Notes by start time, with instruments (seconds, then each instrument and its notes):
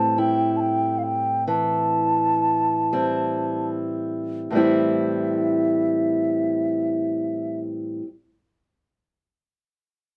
Already playing: steel-string acoustic guitar A2 E3 G3 C4, flute A5
0.18 steel-string acoustic guitar E4, flute G5
0.56 flute G5 A5
0.98 flute F5
1.03 flute G5
1.48 steel-string acoustic guitar E3, flute A5
2.93 steel-string acoustic guitar G3 C4 E4
4.50 steel-string acoustic guitar A2 E3, flute E5
4.55 steel-string acoustic guitar G3 C4 E4